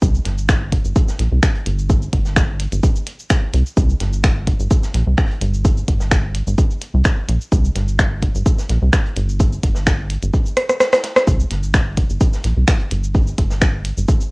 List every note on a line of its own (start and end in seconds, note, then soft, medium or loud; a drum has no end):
0.02 0.19 C2 loud
0.02 kick loud
0.02 closed hi-hat medium
0.02 cabasa medium
0.15 cabasa soft
0.25 0.79 G1 medium
0.25 snare medium
0.25 closed hi-hat medium
0.38 cabasa soft
0.49 finger snap loud
0.49 kick loud
0.49 snare loud
0.49 closed hi-hat medium
0.49 cabasa medium
0.73 kick medium
0.73 closed hi-hat loud
0.73 closed hi-hat medium
0.85 0.93 G1 medium
0.85 cabasa soft
0.96 kick loud
0.96 closed hi-hat medium
0.96 cabasa medium
1.08 snare medium
1.08 cabasa soft
1.19 1.28 A#1 medium
1.19 snare soft
1.19 closed hi-hat loud
1.19 closed hi-hat medium
1.32 1.40 C2 medium
1.43 finger snap loud
1.43 kick loud
1.43 snare loud
1.43 closed hi-hat medium
1.43 cabasa medium
1.55 closed hi-hat soft
1.66 2.08 G1 loud
1.66 closed hi-hat medium
1.79 cabasa soft
1.90 kick loud
1.90 closed hi-hat medium
1.90 cabasa medium
2.02 cabasa soft
2.13 2.67 G1 medium
2.13 kick medium
2.13 closed hi-hat medium
2.25 snare soft
2.25 cabasa soft
2.36 finger snap medium
2.36 kick loud
2.36 snare loud
2.36 closed hi-hat medium
2.36 cabasa medium
2.60 closed hi-hat loud
2.60 closed hi-hat medium
2.72 2.80 G1 medium
2.72 closed hi-hat soft
2.72 cabasa soft
2.83 kick loud
2.83 closed hi-hat medium
2.83 cabasa medium
2.96 cabasa soft
3.07 closed hi-hat medium
3.19 cabasa soft
3.30 finger snap medium
3.30 kick loud
3.30 snare loud
3.30 closed hi-hat medium
3.30 cabasa medium
3.54 3.63 C2 medium
3.54 closed hi-hat medium
3.66 cabasa soft
3.77 3.94 C2 loud
3.77 kick loud
3.77 closed hi-hat medium
3.77 cabasa medium
3.90 cabasa soft
4.00 4.54 G1 medium
4.00 snare medium
4.00 closed hi-hat medium
4.13 cabasa soft
4.24 finger snap medium
4.24 kick loud
4.24 snare loud
4.24 closed hi-hat medium
4.24 cabasa medium
4.47 kick medium
4.47 closed hi-hat medium
4.60 4.68 G1 medium
4.60 cabasa soft
4.70 kick loud
4.70 closed hi-hat medium
4.70 cabasa medium
4.83 snare medium
4.83 cabasa soft
4.94 5.03 A#1 medium
4.94 snare soft
4.94 closed hi-hat medium
5.07 5.15 C2 medium
5.17 finger snap medium
5.17 kick loud
5.17 snare loud
5.17 closed hi-hat medium
5.17 cabasa medium
5.31 closed hi-hat soft
5.41 5.83 G1 loud
5.41 closed hi-hat medium
5.54 cabasa soft
5.65 kick loud
5.65 closed hi-hat medium
5.65 cabasa medium
5.77 cabasa soft
5.88 6.42 G1 medium
5.88 kick medium
5.88 closed hi-hat medium
6.00 snare medium
6.00 cabasa soft
6.11 finger snap medium
6.11 kick loud
6.11 snare loud
6.11 closed hi-hat medium
6.11 cabasa medium
6.35 closed hi-hat medium
6.47 6.55 G1 medium
6.47 cabasa soft
6.58 kick loud
6.58 closed hi-hat medium
6.58 cabasa medium
6.71 cabasa soft
6.82 closed hi-hat medium
6.94 7.02 C2 medium
7.04 finger snap medium
7.04 kick loud
7.04 snare loud
7.04 closed hi-hat medium
7.04 cabasa medium
7.28 7.38 A#1 medium
7.28 closed hi-hat medium
7.41 cabasa soft
7.52 7.69 C2 loud
7.52 kick loud
7.52 closed hi-hat medium
7.52 cabasa medium
7.65 cabasa soft
7.75 8.29 G1 medium
7.75 snare soft
7.75 closed hi-hat medium
7.88 cabasa soft
7.99 finger snap medium
7.99 kick loud
7.99 snare loud
7.99 closed hi-hat medium
7.99 cabasa medium
8.22 kick medium
8.22 closed hi-hat medium
8.35 8.43 G1 medium
8.35 cabasa soft
8.46 kick loud
8.46 closed hi-hat medium
8.46 cabasa medium
8.58 snare soft
8.58 cabasa soft
8.69 8.78 A#1 medium
8.69 snare soft
8.69 closed hi-hat medium
8.82 8.90 C2 medium
8.92 finger snap medium
8.92 kick loud
8.92 snare loud
8.92 closed hi-hat medium
8.92 cabasa medium
9.06 closed hi-hat soft
9.16 9.58 G1 loud
9.16 closed hi-hat medium
9.29 cabasa soft
9.39 kick loud
9.39 closed hi-hat medium
9.39 cabasa medium
9.52 cabasa soft
9.63 10.17 G1 medium
9.63 kick medium
9.63 closed hi-hat medium
9.74 snare medium
9.74 cabasa soft
9.86 finger snap medium
9.86 kick loud
9.86 snare loud
9.86 closed hi-hat medium
9.86 cabasa medium
10.10 closed hi-hat medium
10.22 10.30 G1 medium
10.22 closed hi-hat soft
10.22 cabasa soft
10.33 kick loud
10.33 closed hi-hat medium
10.33 cabasa medium
10.46 cabasa soft
10.57 cross-stick medium
10.57 closed hi-hat medium
10.69 cross-stick medium
10.69 closed hi-hat soft
10.69 cabasa soft
10.80 cross-stick medium
10.80 snare loud
10.80 closed hi-hat medium
10.80 cabasa medium
10.92 cross-stick medium
10.92 snare loud
10.92 closed hi-hat medium
10.92 cabasa soft
11.03 snare loud
11.03 closed hi-hat medium
11.16 cross-stick medium
11.16 snare loud
11.16 closed hi-hat medium
11.16 cabasa soft
11.27 11.44 C2 loud
11.27 kick loud
11.27 closed hi-hat medium
11.27 cabasa medium
11.40 cabasa soft
11.51 12.04 G1 medium
11.51 snare soft
11.51 closed hi-hat medium
11.63 cabasa soft
11.74 finger snap loud
11.74 kick loud
11.74 snare loud
11.74 closed hi-hat medium
11.74 cabasa medium
11.97 kick medium
11.97 closed hi-hat medium
12.10 12.18 G1 medium
12.10 cabasa soft
12.21 kick loud
12.21 closed hi-hat medium
12.21 cabasa medium
12.33 snare soft
12.33 cabasa soft
12.44 12.53 A#1 medium
12.44 snare soft
12.44 closed hi-hat medium
12.57 12.65 C2 medium
12.68 finger snap loud
12.68 kick loud
12.68 snare loud
12.68 closed hi-hat medium
12.68 cabasa medium
12.79 closed hi-hat soft
12.91 13.33 G1 loud
12.91 closed hi-hat medium
13.04 cabasa soft
13.14 kick loud
13.14 closed hi-hat medium
13.14 cabasa medium
13.27 cabasa soft
13.38 13.92 G1 medium
13.38 kick medium
13.38 closed hi-hat medium
13.50 snare medium
13.50 cabasa soft
13.61 finger snap loud
13.61 kick loud
13.61 snare loud
13.61 closed hi-hat medium
13.61 cabasa medium
13.85 closed hi-hat loud
13.85 closed hi-hat medium
13.97 14.05 G1 medium
13.97 cabasa soft
14.08 kick loud
14.08 closed hi-hat medium
14.08 cabasa medium
14.21 cabasa soft